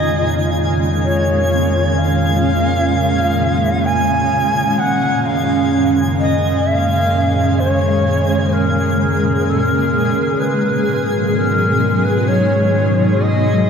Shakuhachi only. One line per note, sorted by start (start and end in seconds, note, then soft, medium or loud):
0.00 0.53 D#5 loud
1.04 2.00 C#5 medium
1.98 3.87 F5 loud
3.85 4.80 G#5 loud
4.79 5.27 F#5 loud
5.26 5.92 F5 loud
6.19 6.68 D#5 medium
6.67 7.61 F5 medium
7.60 8.54 C#5 medium
8.53 9.47 A#4 medium
9.47 9.61 A4 medium
9.61 10.43 A#4 medium
10.41 11.08 B4 medium
11.35 12.06 A#4 medium
12.05 12.29 B4 medium
12.28 13.24 C#5 medium
13.22 13.70 D#5 medium